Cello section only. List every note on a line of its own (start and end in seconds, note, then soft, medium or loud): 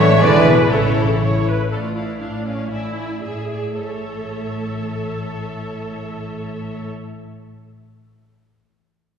0.22 0.47 D3 loud
0.47 0.71 B2 medium
0.72 1.22 C#3 medium
1.72 2.15 A2 soft
2.21 2.65 A2 soft
2.72 3.18 A2 medium
3.24 3.74 A2 medium
3.81 6.85 A2 soft